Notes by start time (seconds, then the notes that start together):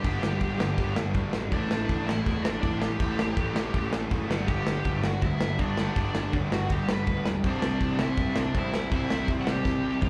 Already playing: G4 G5
0.04 G1 G2 D3 G3 B3 D4, kick, crash
0.23 G1 G2 D3 G3, snare
0.40 G1 G2 D3 G3, kick, crash
0.59 G1 G2 D3 G3, snare
0.77 G1 G2 D3 G3, kick, crash
0.96 G1 G2 D3 G3, snare
1.14 D2 G2 D3 G3, kick, crash
1.33 G#1 G2 D3 G3, snare
1.52 A1 A2 E3 A3 C4 D4 E4 D5, kick, crash
1.70 A1 A2 E3 A3, snare
1.88 A1 A2 E3 A3, kick, crash
2.07 A1 A2 E3 A3 E4 E5, snare
2.26 E2 A2 E3 A3, kick, crash
2.42 A1 A2 E3 A3 D4 D5, snare
2.60 A1 A2 E3 A3 D4 D5, kick, crash
2.78 A2 G4 G5, snare
2.82 E3 A3
2.99 A1 A2 E3 A3 C4 E4, kick, crash
3.17 A1 A2 E3 A3, snare
3.37 A1 A2 E3 A3, kick, crash
3.54 A1 A2 E3 A3, snare
3.74 A1 A2 E3 A3, kick, crash
3.91 A1 A2 E3 A3, snare
4.11 F#1 A2 E3 A3, kick, crash
4.29 G1 G2 D3 G3 B3 D4, snare
4.47 G1 G2 D3 G3 G4 G5, kick, crash
4.66 G1 G2 D3 G3, snare
4.85 G1 G2 D3 G3, kick, crash
5.03 G1 G2 D3 G3 F#4 F#5, snare
5.21 D2 G2 D3 G3 E4 E5, kick, crash
5.40 G1 G2 D3 G3, snare
5.59 G1 G2 D3 G3 D4 D5, kick, crash
5.77 G2 D3 G3 B3 D4, snare
5.96 G1 G2 D3 G3 D4 D5, kick, crash
6.14 G1 G2 D3 G3, snare
6.33 G1 G2 D3 G3, kick, crash
6.51 G1 G2 D3 G3 F#4 F#5, snare
6.69 G1 G2 D3 G3 G4 G5, kick, crash
6.89 G1 G2 D3 G3 B4 B5, snare
7.07 D2 G2 D3 G3, kick, crash
7.25 E1 G2 D3 G3, snare
7.44 C2 C3 G3 C4 D4 E4 D5, kick, crash
7.62 C2 C3 G3 C4, snare
7.80 C2 C3 G3 C4, kick, crash
7.98 C2 C3 G3 C4 E4 E5, snare
8.17 G2 C3 G3 C4, kick, crash
8.35 C2 C3 G3 C4 D4 D5, snare
8.54 C2 C3 G3 C4 E4 E5, kick, crash
8.74 C3 G3 C4, snare
8.91 C2 C3 G3 C4 E4, kick, crash
8.96 E5
9.10 C2 C3 G3 C4, snare
9.28 C2 C3 G3 C4, kick, crash
9.41 F#5
9.47 C2 C3 G3 C4 G4 G5, snare
9.65 C2 C3 G3 C4, kick, snare
9.84 C2 C3 G3 C4
10.02 G2 C3 G3 C4, kick, mid tom